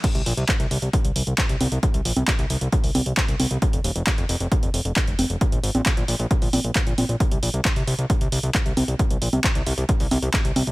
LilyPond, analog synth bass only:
\new Staff \with { instrumentName = "Analog synth bass" } { \clef bass \time 4/4 \key bes \mixolydian \tempo 4 = 134 r16 c,16 bes,,16 c,16 r16 c,16 c,16 c,16 r16 c,16 c,16 c,16 r16 c,16 c,16 c,16 | r16 c,16 bes,,16 c,16 r16 c,16 c,16 c,16 r16 c,16 c,16 c,16 r16 c,16 c,16 c,16 | r16 f,,16 ees,,16 f,,16 r16 f,,16 f,,16 f,,16 r16 f,,16 f,,16 f,,16 r16 f,,16 f,,16 f,,16 | r16 bes,,16 aes,,16 bes,,16 r16 bes,,16 bes,,16 bes,,16 r16 bes,,16 bes,,16 bes,,16 r16 bes,,16 bes,,16 bes,,16 |
r16 c,16 bes,,16 c,16 r16 c,16 c,16 c,16 r16 c,16 c,16 c,16 r16 c,16 c,16 c,16 | r16 c,16 bes,,16 c,16 r16 c,16 c,16 c,16 r16 c,16 c,16 c,16 r16 c,16 c,16 c,16 | }